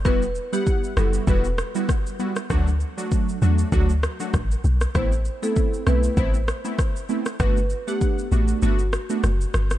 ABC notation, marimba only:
X:1
M:4/4
L:1/16
Q:"Swing 16ths" 1/4=98
K:Em
V:1 name="Marimba"
B3 G3 A2 B6 z2 | z16 | c3 A3 B2 c6 z2 | B3 G4- G F6 z2 |]